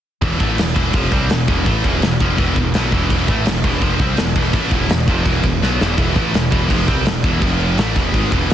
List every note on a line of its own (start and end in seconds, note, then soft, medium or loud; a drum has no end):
0.22 0.39 E1 medium
0.22 0.40 E2 medium
0.22 0.40 B2 loud
0.22 0.39 E3 loud
0.22 kick loud
0.22 crash medium
0.40 0.57 A1 medium
0.40 0.58 A2 medium
0.40 0.58 E3 medium
0.40 0.58 A3 medium
0.40 kick loud
0.40 crash medium
0.58 0.75 E1 medium
0.58 0.73 E2 medium
0.58 0.73 B2 medium
0.58 snare loud
0.58 crash medium
0.75 0.93 E1 medium
0.75 0.93 E2 medium
0.75 0.93 B2 medium
0.75 0.93 E3 medium
0.75 kick loud
0.75 crash medium
0.93 1.11 F1 loud
0.93 1.12 F2 medium
0.93 1.10 C3 medium
0.93 1.12 F3 medium
0.93 kick loud
0.93 crash medium
1.11 1.29 C2 loud
1.11 1.29 C3 medium
1.11 1.30 G3 medium
1.11 1.30 C4 loud
1.11 kick loud
1.11 crash medium
1.29 1.46 E1 medium
1.29 1.44 E2 medium
1.29 1.45 B2 medium
1.29 snare loud
1.29 crash medium
1.47 1.65 E1 loud
1.47 1.65 E2 medium
1.47 1.65 B2 loud
1.47 1.66 E3 loud
1.47 kick loud
1.47 crash medium
1.66 1.83 A1 loud
1.66 1.84 A2 medium
1.66 1.84 E3 loud
1.66 1.84 A3 loud
1.66 kick loud
1.66 crash medium
1.84 2.01 E1 medium
1.84 2.02 E2 medium
1.84 2.02 B2 medium
1.84 2.02 E3 loud
1.84 kick loud
1.84 crash medium
2.02 2.19 E1 medium
2.02 2.17 E2 medium
2.02 2.17 B2 medium
2.02 snare loud
2.02 crash medium
2.20 2.37 F1 loud
2.20 2.38 F2 medium
2.20 2.38 C3 medium
2.20 2.38 F3 loud
2.20 kick loud
2.20 crash medium
2.38 2.55 E1 loud
2.38 2.56 E2 loud
2.38 2.56 B2 loud
2.38 2.56 E3 loud
2.38 kick loud
2.38 crash medium
2.56 2.73 E1 medium
2.56 2.71 E2 medium
2.56 2.71 B2 medium
2.56 kick medium
2.56 crash medium
2.74 2.91 B1 medium
2.74 2.92 B2 medium
2.74 2.92 F#3 loud
2.74 2.92 B3 loud
2.74 snare loud
2.74 crash medium
2.92 3.09 E1 loud
2.92 3.10 E2 medium
2.92 3.10 B2 loud
2.92 3.10 E3 loud
2.92 kick loud
2.92 crash medium
3.10 3.27 E1 medium
3.10 3.28 E2 medium
3.10 3.28 B2 loud
3.10 3.28 E3 medium
3.10 kick loud
3.10 crash medium
3.28 3.45 A1 medium
3.28 3.46 A2 medium
3.28 3.46 E3 medium
3.28 3.46 A3 loud
3.28 kick loud
3.28 crash medium
3.46 3.63 E1 medium
3.46 3.60 E2 medium
3.46 3.61 B2 medium
3.46 snare loud
3.46 crash medium
3.64 3.81 E1 loud
3.64 3.81 E2 medium
3.64 3.82 B2 medium
3.64 3.82 E3 loud
3.64 kick loud
3.64 crash medium
3.81 3.99 F1 loud
3.81 3.99 F2 loud
3.81 3.99 C3 loud
3.81 4.00 F3 loud
3.81 kick loud
3.81 crash medium
3.99 4.16 C2 loud
3.99 4.18 C3 medium
3.99 4.18 G3 loud
3.99 4.18 C4 loud
3.99 kick loud
3.99 crash medium
4.17 4.35 E1 medium
4.17 4.33 E2 medium
4.17 4.33 B2 medium
4.17 snare loud
4.17 crash medium
4.35 4.53 E1 loud
4.35 4.54 E2 medium
4.35 4.54 B2 loud
4.35 4.53 E3 loud
4.35 kick loud
4.35 crash medium
4.53 4.70 A1 medium
4.53 4.72 A2 medium
4.53 4.72 E3 medium
4.53 4.72 A3 loud
4.53 kick loud
4.53 crash medium
4.71 4.88 E1 medium
4.71 4.89 E2 medium
4.71 4.90 B2 medium
4.71 4.90 E3 loud
4.71 kick loud
4.71 crash medium
4.89 5.07 E1 medium
4.89 5.05 E2 medium
4.89 5.05 B2 medium
4.89 snare loud
4.89 crash medium
5.07 5.25 F1 loud
5.07 5.26 F2 medium
5.07 5.26 C3 medium
5.07 5.26 F3 medium
5.07 kick loud
5.07 crash medium
5.26 5.43 E1 medium
5.26 5.44 E2 loud
5.26 5.44 B2 medium
5.26 5.44 E3 loud
5.26 kick loud
5.26 crash medium
5.43 5.60 E1 medium
5.43 5.59 E2 medium
5.43 5.59 B2 medium
5.43 kick medium
5.43 crash medium
5.62 5.79 B1 medium
5.62 5.79 B2 medium
5.62 5.80 F#3 medium
5.62 5.80 B3 loud
5.62 snare medium
5.80 5.97 E1 medium
5.80 5.96 E2 medium
5.80 5.96 B2 medium
5.80 5.96 E3 medium
5.80 snare medium
5.97 6.15 E1 medium
5.97 6.15 E2 medium
5.97 6.15 B2 medium
5.97 6.14 E3 loud
5.97 kick loud
5.97 crash medium
6.15 6.33 A1 medium
6.15 6.33 A2 medium
6.15 6.33 E3 medium
6.15 6.33 A3 medium
6.15 kick loud
6.15 crash medium
6.34 6.51 E1 medium
6.34 6.48 E2 medium
6.34 6.49 B2 medium
6.34 snare loud
6.34 crash medium
6.52 6.69 E1 medium
6.52 6.69 E2 medium
6.52 6.69 B2 medium
6.52 6.70 E3 loud
6.52 kick loud
6.52 crash medium
6.69 6.87 F1 loud
6.69 6.87 F2 loud
6.69 6.86 C3 medium
6.69 6.87 F3 loud
6.69 kick loud
6.69 crash medium
6.87 7.05 C2 loud
6.87 7.05 C3 medium
6.87 7.06 G3 loud
6.87 7.06 C4 loud
6.87 kick loud
6.87 crash medium
7.05 7.23 E1 medium
7.05 7.21 E2 medium
7.05 7.21 B2 medium
7.05 snare loud
7.05 crash medium
7.24 7.41 E1 medium
7.24 7.42 E2 medium
7.24 7.43 B2 medium
7.24 7.43 E3 loud
7.24 kick loud
7.24 crash medium
7.42 7.76 F1 medium
7.42 7.78 F2 loud
7.42 7.78 C3 loud
7.42 7.78 F3 loud
7.42 kick loud
7.42 crash medium
7.60 crash medium
7.78 7.95 A1 medium
7.78 7.96 A2 medium
7.78 7.96 E3 loud
7.78 7.96 A3 loud
7.78 snare loud
7.78 crash medium
7.96 8.13 E1 loud
7.96 8.14 E2 medium
7.96 8.14 B2 medium
7.96 8.14 E3 medium
7.96 kick loud
7.96 crash medium
8.14 8.31 G#1 medium
8.14 8.31 G#2 loud
8.14 8.32 D#3 loud
8.14 8.32 G#3 loud
8.14 kick loud
8.14 crash medium
8.32 8.49 E1 loud
8.32 8.50 E2 medium
8.32 8.48 B2 loud
8.32 8.50 E3 loud
8.32 kick loud
8.32 crash medium
8.49 8.54 B2 medium
8.49 8.54 F#3 medium
8.49 8.54 B3 medium
8.49 crash medium